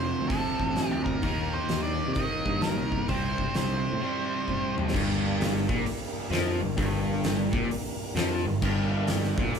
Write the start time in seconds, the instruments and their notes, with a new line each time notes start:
Already playing: picked electric bass F1, distorted electric guitar F2 C3 F3, tonewheel organ C4 F4 A4 C5, lead electric guitar C5
0.21 picked electric bass D2
0.28 distorted electric guitar F2 C3, lead electric guitar A4, kick, open hi-hat
0.32 distorted electric guitar F3
0.59 picked electric bass A1, kick
0.76 snare, open hi-hat
0.87 lead electric guitar G4
0.91 picked electric bass D2
1.04 lead electric guitar A#4, kick
1.22 picked electric bass D#2, distorted electric guitar D#3 A#3 D#4, tonewheel organ A#3 D#4 G4 A#4, kick, open hi-hat
1.54 lead electric guitar C5
1.69 picked electric bass D#2, snare, open hi-hat
1.83 lead electric guitar D5
2.08 picked electric bass C3
2.14 distorted electric guitar D#3, lead electric guitar D#5, kick, open hi-hat
2.19 distorted electric guitar A#3 D#4
2.45 picked electric bass G2, kick
2.61 lead electric guitar A#4, snare, open hi-hat
2.76 picked electric bass C2
2.92 kick
3.08 picked electric bass C2, distorted electric guitar C3 G3 C4, tonewheel organ C4 D#4 G4 C5, lead electric guitar C5, kick, open hi-hat
3.38 kick
3.54 picked electric bass C2, lead electric guitar C5, snare, open hi-hat
3.93 picked electric bass A2
4.00 distorted electric guitar C3 G3 C4
4.48 kick
4.78 mid tom
4.88 snare
4.93 picked electric bass G1, distorted electric guitar G2, tonewheel organ A#3 D4 G4 A#4, kick, crash
5.41 snare, open hi-hat
5.68 picked electric bass A#1, distorted electric guitar A#2, kick
5.85 muted distorted electric guitar stroke, muted picked electric bass stroke, open hi-hat
6.30 picked electric bass F2, distorted electric guitar F3, snare, open hi-hat
6.61 picked electric bass G1, distorted electric guitar G2
6.77 picked electric bass G1, distorted electric guitar G2, kick, open hi-hat
7.24 snare, open hi-hat
7.52 picked electric bass A#1, distorted electric guitar A#2, kick
7.69 muted picked electric bass stroke, muted distorted electric guitar stroke, open hi-hat
8.15 picked electric bass F2, distorted electric guitar F3, snare, open hi-hat
8.45 picked electric bass G1, distorted electric guitar G2
8.62 picked electric bass G1, distorted electric guitar G2, tonewheel organ A#3 D4 G4 A#4, kick, crash
9.07 snare, open hi-hat
9.24 snare
9.37 picked electric bass A#1, distorted electric guitar A#2, kick
9.53 muted picked electric bass stroke, muted distorted electric guitar stroke, open hi-hat